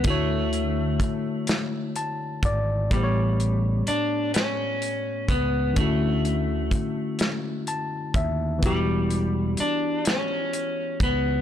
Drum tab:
HH |xxxxxx|xxxxxx|xxxxxx|xxxxxx|
SD |---o--|---o--|---o--|---o--|
BD |o-o--o|o----o|o-o--o|o----o|